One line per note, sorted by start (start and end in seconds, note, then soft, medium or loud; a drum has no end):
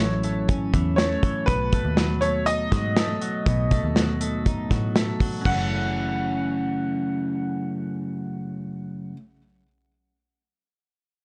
0.00 0.70 A1 medium
0.00 1.48 F#2 medium
0.00 0.72 E3 medium
0.00 0.24 A3 medium
0.00 0.47 C#4 medium
0.00 0.44 C#5 medium
0.00 closed hi-hat medium
0.23 0.98 A3 medium
0.23 closed hi-hat medium
0.49 1.53 C#4 medium
0.49 kick medium
0.49 closed hi-hat medium
0.73 1.16 E2 loud
0.73 1.22 E3 medium
0.73 kick medium
0.73 closed hi-hat medium
0.96 1.73 A3 medium
0.96 1.43 C#5 medium
0.96 snare loud
0.96 closed hi-hat medium
1.23 1.53 E3 soft
1.23 kick medium
1.23 closed hi-hat medium
1.46 1.80 B1 medium
1.46 3.45 B2 medium
1.46 2.24 B4 medium
1.46 kick loud
1.46 closed hi-hat medium
1.72 2.22 A3 medium
1.72 kick medium
1.72 closed hi-hat medium
1.85 2.68 D#2 medium
1.97 2.71 F#3 medium
1.97 snare loud
1.97 closed hi-hat medium
2.21 2.96 A3 medium
2.21 2.45 C#5 medium
2.21 closed hi-hat medium
2.46 4.45 D#4 medium
2.46 4.91 D#5 loud
2.46 closed hi-hat medium
2.72 3.14 G#2 medium
2.72 3.21 F#3 medium
2.72 kick medium
2.72 snare soft
2.72 closed hi-hat medium
2.97 3.71 A3 medium
2.97 snare loud
2.97 closed hi-hat medium
3.22 3.96 F#3 medium
3.22 closed hi-hat medium
3.46 3.78 B1 loud
3.46 5.45 B2 medium
3.46 kick loud
3.46 closed hi-hat medium
3.71 4.20 A3 medium
3.71 kick medium
3.71 closed hi-hat medium
3.83 4.66 D#2 medium
3.96 4.70 F#3 medium
3.96 snare medium
3.96 closed hi-hat medium
4.21 4.95 A3 soft
4.21 closed hi-hat medium
4.46 5.50 D#4 medium
4.46 kick medium
4.46 closed hi-hat medium
4.71 5.13 A2 medium
4.71 5.20 F#3 medium
4.71 kick medium
4.71 snare soft
4.71 closed hi-hat medium
4.96 5.51 A3 medium
4.96 snare loud
4.96 closed hi-hat medium
5.20 5.48 F#3 medium
5.20 kick medium
5.20 open hi-hat medium
5.41 9.12 F#2 medium
5.41 9.16 C#3 medium
5.45 9.12 F#1 medium
5.45 9.19 E3 medium
5.45 9.13 F#5 medium
5.45 kick medium
5.45 crash medium
5.52 9.22 A3 medium
5.52 9.25 C#4 medium